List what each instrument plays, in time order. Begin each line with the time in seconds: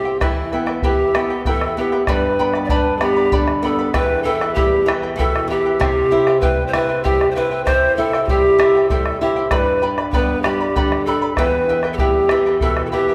Already playing: nylon-string guitar C3 C4, pan flute G4
0.05 charango E4 C5 G5
0.20 nylon-string guitar E3, pan flute E4, charango E4 G4 B4 E5 G5, bombo rim, bombo low
0.52 nylon-string guitar B3, charango E4 B4 E5 G5, bombo rim
0.66 charango E4 B4 G5, bombo rim
0.82 nylon-string guitar E3, charango E4 G4 B4 E5 G5, pan flute G4, bombo low
1.14 nylon-string guitar B3, charango E4 B4 E5 G5, bombo rim
1.30 charango E4 B4 G5, bombo rim
1.45 nylon-string guitar E3, charango E4 G4 B4 E5 G5, pan flute A4, bombo rim, bombo low
1.61 bombo rim
1.77 nylon-string guitar B3, charango E4 B4 E5 G5, pan flute G4
1.92 charango E4 B4 G5, bombo rim
2.06 nylon-string guitar G2, charango G4 B4 D5 G5 B5, pan flute B4, bombo rim, bombo low
2.39 nylon-string guitar B3, charango B4 D5 G5 B5
2.54 charango B4 D5 B5, bombo rim
2.64 pan flute D5
2.69 nylon-string guitar D4, charango G4 B4 D5 G5 B5, pan flute B4, bombo low
2.97 nylon-string guitar B3, pan flute G4 A4, bombo rim
3.01 charango B4 D5 G5 B5
3.16 charango B4 D5 B5
3.32 nylon-string guitar D3, charango G4 B4 D5 G5 B5, bombo low
3.48 bombo rim
3.63 nylon-string guitar B3, pan flute A4, charango B4 D5 G5 B5, bombo rim
3.79 charango B4 D5 B5
3.94 nylon-string guitar E2, charango E4 G4 B4 E5 G5, pan flute B4, bombo rim, bombo low
4.23 nylon-string guitar E3, charango E4 E5, pan flute A4
4.27 charango B4 G5
4.41 charango E4 B4 G5, bombo rim
4.54 nylon-string guitar G3, charango E4 G4 B4 E5 G5, pan flute G4, bombo low
4.86 nylon-string guitar E3, charango E4 B4 E5 G5, bombo rim
5.03 charango E4 B4 G5
5.16 nylon-string guitar B2, charango E4 G4 B4 E5, pan flute A4, bombo low
5.20 charango G5
5.36 bombo rim
5.48 nylon-string guitar E3, charango E4 B4 E5 G5, pan flute G4, bombo rim
5.66 charango E4 B4 G5
5.80 nylon-string guitar C3, charango E4 G4 C5 E5 G5, bombo rim, bombo low
6.11 charango E4 C5 E5 G5, nylon-string guitar E4
6.27 charango E4 C5 G5, bombo rim
6.40 nylon-string guitar G3, charango E4 G4 C5 E5 G5, pan flute B4, bombo low
6.67 pan flute C5
6.73 nylon-string guitar E4, charango E4 C5 E5 G5, pan flute B4, bombo rim
6.89 charango E4 C5 G5
7.03 nylon-string guitar G3, charango E4 G4 C5 E5 G5, pan flute G4, bombo low
7.21 bombo rim
7.30 pan flute C5
7.35 charango E4 C5 E5 G5, nylon-string guitar E4, pan flute B4, bombo rim
7.51 charango E4 C5 G5
7.65 nylon-string guitar C3, charango E4 G4 C5 E5 G5, pan flute C5, bombo rim, bombo low
7.96 nylon-string guitar E4, charango E4 C5 E5 G5, pan flute A4
8.13 charango E4 C5 G5, bombo rim
8.24 pan flute G4 A4, bombo rim, bombo low
8.29 nylon-string guitar G3, charango E4 G4 C5 E5 G5
8.59 nylon-string guitar E4, charango E4 C5 E5 G5, bombo rim
8.75 charango E4 C5 G5
8.89 nylon-string guitar G3, charango E4 G4 C5 E5 G5, pan flute A4, bombo rim, bombo low
9.06 bombo rim
9.20 nylon-string guitar E4, charango E4 C5 E5 G5, pan flute G4
9.36 charango E4 C5 G5
9.50 nylon-string guitar G2, charango G4 B4 D5 G5 B5, pan flute B4, bombo rim, bombo low
9.82 nylon-string guitar G3, charango B4 D5 G5 B5
9.98 charango B4 D5 B5, bombo rim
10.12 nylon-string guitar B3, charango G4 B4 D5 G5 B5, pan flute B4, bombo low
10.42 nylon-string guitar G3, pan flute G4, charango B4 D5 G5 B5, bombo rim
10.61 charango B4 D5 B5
10.76 nylon-string guitar D3, charango G4 B4 D5 G5 B5, bombo low
10.92 bombo rim
11.05 nylon-string guitar G3, pan flute A4, charango B4 D5 G5 B5, bombo rim
11.22 charango B4 D5 B5
11.35 nylon-string guitar E2, charango E4 G4 B4 E5 G5, pan flute B4, bombo rim, bombo low
11.69 nylon-string guitar E3, charango E4 B4 E5 G5
11.83 charango E4 B4 G5, bombo rim
11.93 pan flute A4
11.97 nylon-string guitar G3, charango E4 G4 B4 E5 G5, pan flute G4, bombo low
12.29 nylon-string guitar E3, charango E4 B4 E5 G5, bombo rim
12.46 charango E4 B4 G5
12.60 nylon-string guitar B2, charango E4 G4 B4 E5 G5, pan flute A4, bombo low
12.77 bombo rim
12.86 pan flute A4
12.91 nylon-string guitar E3, charango E4 B4 E5 G5, pan flute G4, bombo rim
13.09 charango E4 B4 G5